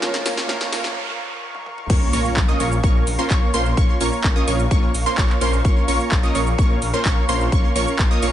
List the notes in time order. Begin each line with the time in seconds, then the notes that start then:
Already playing: A#3 C#4 F4 A#4 F5 C#6, riser
0.00 A#1 A#2 F3 A#3 C#4 F4 A#4 C#5, snare, noise sweep
0.14 snare
0.26 A#1 A#3 C#4 F4 A#4 C#5, snare, open hi-hat
0.37 snare
0.48 A#1 A#2 F3 A#3 C#4 F4 A#4 C#5, snare
0.61 snare
0.72 A#1 A#3 C#4 F4 A#4 C#5, snare, open hi-hat
0.84 snare
1.55 high tom
1.66 mid tom
1.78 mid tom
1.90 A#1 A#3 C#4 F4 A#4 C#5 F5 C#6, kick, crash, impact, cabasa
2.13 A#1 A#3 C#4 F4 A#4 C#5 C#6, open hi-hat, cabasa
2.25 cabasa
2.37 A#1, kick, clap, cabasa
2.48 A#3 C#4 F4 A#4 D#5 D#6
2.60 A#1 A#3 C#4 F4 A#4 C#5 C#6, open hi-hat, cabasa
2.72 cabasa
2.83 A#1 A#3 C#4 F4 A#4 C#5 C#6, kick, cabasa
3.07 A#1, open hi-hat, cabasa
3.19 A#3 C#4 F4 A#4 C5 C6, cabasa
3.30 A#1 C#4 C#5 C#6, kick, clap, cabasa
3.54 A#1 A#3 C#4 F4 A#4 C5 C6, open hi-hat, cabasa
3.66 cabasa
3.77 A#1 A#3 C#4 F4 A#4 C#5 C#6, kick, cabasa
4.01 A#1 A#3 C#4 F4 A#4 C#5 C#6, open hi-hat, cabasa
4.12 cabasa
4.24 A#1, kick, clap, cabasa
4.36 A#3 C#4 F4 A#4 D#5 D#6
4.48 A#1 A#3 C#4 F4 A#4 C#5 C#6, open hi-hat, cabasa
4.59 cabasa
4.71 A#1 A#3 C#4 F4 A#4 C#5 C#6, kick, cabasa
4.94 A#1, open hi-hat, cabasa
5.06 A#3 C#4 F4 A#4 C5 C6, cabasa
5.18 A#1 A#3 C#4 F4 A#4 C#5 C#6, kick, clap, cabasa
5.29 clap
5.41 A#1 A#3 C#4 F4 A#4 C5 C6, open hi-hat, cabasa
5.53 cabasa
5.65 A#1 A#3 C#4 F4 A#4 C#5 C#6, kick, cabasa
5.88 A#1 A#3 C#4 F4 A#4 C#5 C#6, open hi-hat, cabasa
6.00 cabasa
6.12 A#1, kick, clap, cabasa
6.23 A#3 C#4 F4 A#4 D#5 D#6
6.35 A#1 A#3 C#4 F4 A#4 C#5 C#6, open hi-hat, cabasa
6.47 cabasa
6.58 A#1 A#3 C#4 F4 A#4 C#5 C#6, kick, cabasa
6.82 A#1, open hi-hat, cabasa
6.94 A#3 C#4 F4 A#4 C5 C6, cabasa
7.05 A#1 C#6, kick, clap, cabasa
7.29 A#1 A#3 C#4 F4 A#4 C5 C6, open hi-hat, cabasa
7.41 cabasa
7.52 A#1 C#4 F4 A#4 C#5 C#6, kick, cabasa
7.76 A#1 A#3 C#4 F4 A#4 C#5 C#6, open hi-hat, cabasa
7.87 cabasa
7.99 A#1, kick, clap, cabasa
8.11 A#3 C#4 F4 A#4 D#5 D#6
8.22 A#1 A#3 C#4 F4 A#4 C#5 C#6, open hi-hat, cabasa